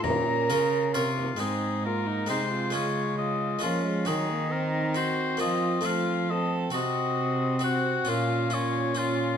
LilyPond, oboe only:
\new Staff \with { instrumentName = "Oboe" } { \time 3/4 \key bes \minor \tempo 4 = 135 bes''2 f'4 | aes'4 bes'4 c''4 | des''4 ees''4 f'4 | aes'4 bes'4 c''4 |
ees''4 f''4 ees''8 r8 | ees''2 ges''4 | f''4 des''4 f'4 | }